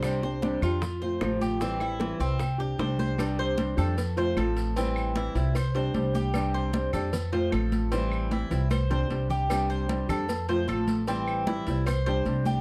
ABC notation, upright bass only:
X:1
M:4/4
L:1/8
Q:1/4=152
K:C
V:1 name="Upright bass" clef=bass
C,,3 F,,3 A,,,2- | A,,,3 C,,3 C,,2- | C,,3 F,,3 A,,,2- | A,,,3 C,,3 C,,2- |
C,,3 F,,3 A,,,2- | A,,,3 C,,3 C,,2- | C,,3 F,,3 A,,,2- | A,,,3 C,,3 C,,2 |]